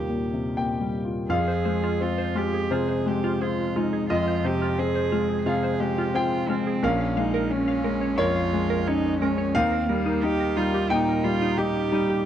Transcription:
Already playing: grand piano D#2 A#2 C3 G3 F4 D#5 F5, cello G4
0.09 grand piano A#2
0.33 grand piano C3
0.57 grand piano A#2 G5
0.81 grand piano G3
1.05 grand piano F4
1.29 grand piano F2 F5, synth pluck F4, cello G#4
1.48 synth pluck C5
1.65 grand piano G#3, synth pluck C5
1.84 synth pluck F4
2.00 grand piano C4, cello F4
2.18 synth pluck C5
2.35 grand piano G#3, synth pluck F4, cello G4
2.54 synth pluck G#4
2.71 grand piano C3 C5, synth pluck F4, cello G#4
2.89 synth pluck C5
3.06 grand piano G#3, cello G4
3.24 synth pluck F4
3.41 grand piano C4, cello F4, synth pluck G#4
3.76 grand piano G#3, cello D#4, synth pluck F4
3.93 synth pluck G#4
4.10 grand piano F2 D#5, synth pluck F4, cello F4
4.28 synth pluck C5
4.44 grand piano C3, cello G4, synth pluck C5
4.62 synth pluck F4
4.79 grand piano C4, cello G#4
4.95 synth pluck C5
5.12 grand piano G#3, synth pluck F4
5.29 synth pluck G#4
5.46 grand piano C3 F5, synth pluck F4, cello G#4
5.63 synth pluck C5
5.80 grand piano G#3, cello G4
5.98 synth pluck F4
6.14 grand piano C4 G5, cello F4, synth pluck G#4
6.49 grand piano G#3, cello C4, synth pluck F4
6.67 synth pluck G#4
6.83 grand piano A#1 F5, cello C#4, synth pluck A#4
7.01 synth pluck F5
7.16 grand piano G#3, cello D#4, synth pluck F5
7.34 synth pluck A#4
7.50 grand piano C#4, cello C#4
7.68 synth pluck F5
7.84 grand piano G#3, synth pluck A#4
8.01 synth pluck C#5
8.18 grand piano F2 C#5, cello F4, synth pluck A#4
8.36 synth pluck F5
8.53 grand piano G#3
8.70 synth pluck A#4
8.87 grand piano C#4, cello D#4, synth pluck C#5
9.21 grand piano G#3, cello C#4, synth pluck A#4
9.38 synth pluck C#5
9.55 grand piano D#2 F5, cello C4, synth pluck D#4
9.72 synth pluck A#4
9.89 grand piano G3, cello A#3, synth pluck A#4
10.06 synth pluck D#4
10.23 grand piano D#4, cello G4
10.40 synth pluck A#4
10.57 grand piano G3, synth pluck D#4, cello F4
10.74 synth pluck G4
10.90 grand piano A#2 G5, synth pluck D#4, cello D#4
11.09 synth pluck A#4
11.24 grand piano G3, cello F4
11.42 synth pluck D#4
11.58 grand piano D#4, cello G4, synth pluck G4
11.92 grand piano G3, synth pluck D#4
12.10 synth pluck G4

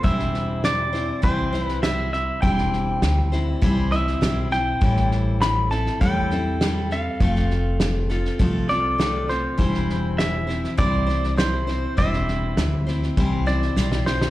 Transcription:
0.03 upright bass E1, steel-string acoustic guitar E3 G3 C4 E4 C5, clean electric guitar E5, kick, snare
0.19 snare
0.34 snare
0.64 clean electric guitar D5, snare, hi-hat pedal
0.93 steel-string acoustic guitar C4 E4 C5, snare
1.22 upright bass C2, steel-string acoustic guitar E3 G3 C4 E4 C5, clean electric guitar C5, kick, snare
1.52 steel-string acoustic guitar C4 E4 C5, snare
1.64 clean electric guitar B4
1.69 snare
1.83 steel-string acoustic guitar G3 C4 E4 C5, clean electric guitar E5, snare, hi-hat pedal
2.13 clean electric guitar E5, snare
2.42 upright bass E1, steel-string acoustic guitar E3 G3 C4 E4 C5, clean electric guitar G5, kick, snare
2.58 snare
2.73 snare
3.02 upright bass D2, snare, hi-hat pedal
3.32 steel-string acoustic guitar C4 E4 C5, snare
3.62 upright bass C2, steel-string acoustic guitar E3 G3 C4 E4 C5, kick, snare
3.92 steel-string acoustic guitar C4 E4 C5, clean electric guitar E5, snare
4.07 snare
4.21 upright bass B1, steel-string acoustic guitar G3 C4 E4 C5, snare, hi-hat pedal
4.51 steel-string acoustic guitar C4 E4 C5, clean electric guitar G5, snare
4.81 upright bass A1, steel-string acoustic guitar A2 E3 G3 C4 E4 A4, kick, snare
4.97 snare
5.11 snare
5.41 clean electric guitar B5, snare, hi-hat pedal
5.71 steel-string acoustic guitar G3 C4 E4 A4, clean electric guitar A5, snare
5.86 snare
6.01 upright bass E2, steel-string acoustic guitar A2 E3 G3 C4 E4 A4, clean electric guitar G5, kick, snare
6.31 steel-string acoustic guitar G3 C4 E4 A4, snare
6.61 steel-string acoustic guitar G3 C4 E4 A4, snare, hi-hat pedal
6.91 steel-string acoustic guitar G3 C4 A4, clean electric guitar F5, snare
7.20 upright bass F1, steel-string acoustic guitar F3 A3 C4 F4 A4, kick, snare
7.36 snare
7.50 snare
7.80 snare, hi-hat pedal
8.10 steel-string acoustic guitar C4 F4 A4, snare
8.25 snare
8.39 upright bass C2, steel-string acoustic guitar F3 A3 C4 F4 A4, kick, snare
8.69 steel-string acoustic guitar C4 F4 A4, clean electric guitar D5, snare
8.98 steel-string acoustic guitar A3 C4 F4 A4, snare, hi-hat pedal
9.29 steel-string acoustic guitar C4 F4 A4, clean electric guitar C5, snare
9.58 upright bass E1, steel-string acoustic guitar E3 G3 C4 E4 C5, kick, snare
9.74 snare
9.90 snare
10.18 clean electric guitar E5, snare, hi-hat pedal
10.47 steel-string acoustic guitar C4 E4 C5, snare
10.64 snare
10.77 upright bass C2, steel-string acoustic guitar E3 G3 C4 E4 C5, clean electric guitar D5, kick, snare
11.07 steel-string acoustic guitar C4 E4 C5, snare
11.24 snare
11.36 steel-string acoustic guitar G3 C4 E4 C5, clean electric guitar C5, snare, hi-hat pedal
11.67 steel-string acoustic guitar C4 E4 C5, snare
11.97 upright bass E1, steel-string acoustic guitar E3 G3 C4 E4 C5, clean electric guitar E5, kick, snare
12.13 snare
12.28 snare
12.57 upright bass D2, snare, hi-hat pedal
12.87 steel-string acoustic guitar C4 E4 C5, snare
13.03 snare
13.17 upright bass C2, steel-string acoustic guitar E3 G3 C4 E4 C5, kick, snare
13.31 clean electric guitar D5
13.46 steel-string acoustic guitar C4 E4 C5, clean electric guitar D5, snare
13.62 snare
13.76 upright bass B1, steel-string acoustic guitar G3 C4 E4 C5, snare, hi-hat pedal
13.92 snare
14.06 steel-string acoustic guitar C4 E4 C5, clean electric guitar C5, snare
14.21 snare

